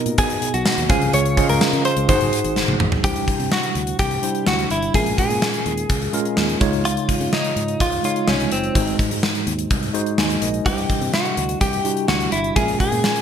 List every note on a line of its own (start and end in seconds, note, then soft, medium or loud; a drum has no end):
0.00 0.91 B2 medium
0.00 0.92 B3 medium
0.00 0.92 D#4 medium
0.00 0.92 F#4 medium
0.00 0.18 A#4 loud
0.00 0.91 A#4 medium
0.00 0.91 D#5 medium
0.06 0.15 A#2 medium
0.06 closed hi-hat medium
0.18 0.36 B2 loud
0.18 0.52 G#4 loud
0.18 kick loud
0.18 closed hi-hat loud
0.30 closed hi-hat medium
0.42 closed hi-hat medium
0.54 0.63 B1 medium
0.54 0.91 F#4 medium
0.54 closed hi-hat medium
0.66 snare loud
0.66 tambourine medium
0.78 0.87 D#2 medium
0.78 closed hi-hat medium
0.89 0.99 C#2 medium
0.89 1.57 C#3 medium
0.89 1.27 C#4 medium
0.89 1.28 F4 medium
0.89 1.14 G#4 medium
0.89 1.28 G#4 medium
0.89 1.28 C5 medium
0.89 1.28 F5 medium
0.89 kick loud
0.89 closed hi-hat medium
1.01 1.10 C2 medium
1.01 closed hi-hat soft
1.13 1.40 C#2 loud
1.13 1.49 C#5 loud
1.13 closed hi-hat medium
1.25 closed hi-hat medium
1.37 1.96 C#4 medium
1.37 1.96 F4 medium
1.37 1.96 G#4 medium
1.37 1.97 C5 medium
1.37 1.43 D#5 medium
1.37 kick medium
1.37 closed hi-hat medium
1.44 2.00 F5 medium
1.49 1.58 C#2 medium
1.49 1.85 A#4 loud
1.49 closed hi-hat medium
1.61 snare loud
1.61 tambourine medium
1.73 1.82 C#3 medium
1.73 closed hi-hat medium
1.85 2.07 C5 loud
1.85 closed hi-hat medium
1.97 2.06 C#2 medium
1.97 closed hi-hat medium
2.08 2.18 G#1 loud
2.08 2.76 G#2 medium
2.08 2.85 D#4 medium
2.08 2.85 F#4 medium
2.08 2.85 G#4 medium
2.08 2.85 C5 medium
2.08 2.76 C5 medium
2.08 2.85 F#5 medium
2.08 kick loud
2.08 closed hi-hat medium
2.20 2.29 F#1 medium
2.20 closed hi-hat soft
2.33 closed hi-hat medium
2.44 2.62 G#1 medium
2.44 closed hi-hat medium
2.56 snare medium
2.68 2.77 A#1 medium
2.68 high tom medium
2.80 2.98 A#1 medium
2.80 mid tom loud
2.92 floor tom loud
3.03 3.22 C2 loud
3.03 3.71 C3 medium
3.03 3.63 G3 medium
3.03 3.63 D4 medium
3.03 3.63 E4 medium
3.03 3.52 G4 medium
3.03 3.63 C5 medium
3.03 kick loud
3.03 closed hi-hat medium
3.16 closed hi-hat medium
3.28 kick medium
3.28 closed hi-hat medium
3.39 3.48 C3 medium
3.39 closed hi-hat medium
3.52 3.99 F#4 medium
3.52 snare loud
3.63 closed hi-hat medium
3.75 3.93 D2 medium
3.75 closed hi-hat medium
3.87 closed hi-hat medium
3.99 4.17 C2 medium
3.99 4.47 G4 medium
3.99 kick medium
3.99 closed hi-hat medium
4.11 closed hi-hat soft
4.22 4.67 G3 medium
4.22 4.67 D4 medium
4.22 4.67 E4 medium
4.22 4.68 C5 medium
4.22 closed hi-hat medium
4.35 closed hi-hat soft
4.47 4.65 D2 medium
4.47 4.69 F#4 medium
4.47 snare loud
4.59 closed hi-hat soft
4.70 4.88 G1 medium
4.70 4.95 E4 medium
4.70 closed hi-hat medium
4.82 closed hi-hat soft
4.94 5.12 A#1 medium
4.94 5.62 A#2 medium
4.94 5.53 G#3 medium
4.94 5.53 C#4 medium
4.94 5.54 F4 medium
4.94 5.17 G#4 loud
4.94 5.54 A#4 medium
4.94 kick loud
4.94 closed hi-hat medium
5.06 closed hi-hat medium
5.18 6.57 G#4 medium
5.18 kick medium
5.18 closed hi-hat medium
5.30 5.39 A#2 medium
5.30 closed hi-hat medium
5.42 snare loud
5.54 closed hi-hat soft
5.66 5.84 D#2 medium
5.66 closed hi-hat medium
5.78 closed hi-hat medium
5.90 6.08 C#2 medium
5.90 kick medium
5.90 closed hi-hat medium
6.02 closed hi-hat soft
6.13 6.57 G#3 medium
6.13 6.58 C#4 medium
6.13 6.58 F4 medium
6.13 6.58 A#4 medium
6.13 closed hi-hat medium
6.25 closed hi-hat soft
6.37 6.55 D#2 medium
6.37 snare loud
6.49 closed hi-hat soft
6.60 6.97 C#2 medium
6.60 7.28 C#3 medium
6.60 7.37 G#3 medium
6.60 7.37 D#4 medium
6.60 7.37 F4 medium
6.60 7.37 C#5 loud
6.60 kick loud
6.60 closed hi-hat medium
6.73 closed hi-hat soft
6.85 7.34 F4 loud
6.85 closed hi-hat medium
6.97 closed hi-hat medium
7.09 kick medium
7.09 closed hi-hat medium
7.21 7.29 C#3 medium
7.21 closed hi-hat soft
7.33 7.82 D#4 loud
7.33 snare loud
7.44 closed hi-hat soft
7.56 7.74 G#2 medium
7.56 closed hi-hat medium
7.68 closed hi-hat medium
7.80 7.98 C#2 medium
7.80 8.03 F4 medium
7.80 kick medium
7.80 closed hi-hat medium
7.92 closed hi-hat soft
8.03 8.48 G#3 medium
8.03 8.48 D#4 medium
8.03 8.48 F4 medium
8.03 8.29 F4 medium
8.03 8.49 C#5 medium
8.03 closed hi-hat medium
8.16 closed hi-hat soft
8.28 8.46 C2 loud
8.28 8.50 C#4 medium
8.28 snare loud
8.40 closed hi-hat soft
8.51 8.69 F#1 medium
8.51 8.96 C4 medium
8.51 closed hi-hat medium
8.64 closed hi-hat soft
8.75 8.93 G#1 loud
8.75 9.43 G#2 medium
8.75 9.34 G#3 medium
8.75 9.34 D#4 medium
8.75 9.35 F#4 medium
8.75 9.35 C5 medium
8.75 kick loud
8.75 closed hi-hat medium
8.87 closed hi-hat medium
8.99 kick medium
8.99 closed hi-hat medium
9.11 9.20 G#2 medium
9.11 closed hi-hat medium
9.23 snare loud
9.35 closed hi-hat soft
9.47 9.65 D#2 medium
9.47 closed hi-hat medium
9.59 closed hi-hat medium
9.71 9.89 C2 medium
9.71 kick medium
9.71 closed hi-hat medium
9.83 closed hi-hat soft
9.94 10.38 G#3 medium
9.94 10.39 D#4 medium
9.94 10.39 F#4 medium
9.94 10.18 C5 medium
9.94 closed hi-hat medium
10.06 closed hi-hat soft
10.18 10.36 D#2 medium
10.18 10.41 D#5 medium
10.18 10.41 G#5 medium
10.18 snare loud
10.30 closed hi-hat soft
10.42 10.60 A#1 medium
10.42 10.88 A#4 medium
10.42 10.87 D#5 medium
10.42 closed hi-hat medium
10.54 closed hi-hat soft
10.65 10.84 C2 medium
10.65 11.33 C3 medium
10.65 11.25 G3 medium
10.65 11.25 D4 medium
10.65 11.25 E4 medium
10.65 11.13 G4 medium
10.65 10.72 B4 medium
10.65 kick loud
10.65 closed hi-hat medium
10.72 11.28 C5 medium
10.78 closed hi-hat medium
10.90 kick medium
10.90 closed hi-hat medium
11.01 11.10 C3 medium
11.01 closed hi-hat soft
11.14 11.61 F#4 medium
11.14 snare loud
11.25 closed hi-hat soft
11.37 11.55 D2 medium
11.37 closed hi-hat medium
11.49 closed hi-hat medium
11.61 11.79 C2 medium
11.61 12.08 G4 medium
11.61 kick loud
11.61 closed hi-hat medium
11.73 closed hi-hat soft
11.84 12.29 G3 medium
11.84 12.29 D4 medium
11.84 12.29 E4 medium
11.84 12.29 F#4 medium
11.84 closed hi-hat medium
11.97 closed hi-hat medium
12.08 12.27 D2 medium
12.08 12.32 F#4 medium
12.08 snare loud
12.20 closed hi-hat soft
12.32 12.50 G1 medium
12.32 12.56 E4 medium
12.32 closed hi-hat medium
12.44 closed hi-hat soft
12.56 12.74 A#1 medium
12.56 13.22 A#2 medium
12.56 13.15 G#3 medium
12.56 12.62 C4 soft
12.56 13.16 F4 medium
12.56 12.79 G#4 loud
12.56 13.16 A#4 medium
12.56 kick loud
12.56 closed hi-hat medium
12.62 13.18 C#4 medium
12.68 closed hi-hat medium
12.80 13.22 G#4 medium
12.80 kick medium
12.80 closed hi-hat medium
12.92 13.01 A#2 medium
12.92 closed hi-hat medium
13.04 snare loud
13.16 closed hi-hat soft